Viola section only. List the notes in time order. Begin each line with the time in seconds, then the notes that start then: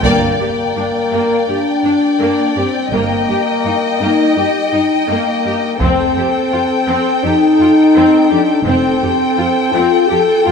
0.03 A#3
0.40 G4
0.76 D4
1.12 A#3
1.49 G4
1.85 D4
2.20 A#3
2.56 G4
2.93 A#3
3.29 G4
3.66 D#4
4.01 A#3
4.37 G4
4.73 D#4
5.08 A#3
5.46 G4
5.81 C4
6.18 G4
6.52 F4
6.88 C4
7.24 G4
7.61 F4
7.96 C4
8.31 G4
8.66 C4
9.02 G4
9.38 F4
9.74 C4
10.09 G4
10.46 F4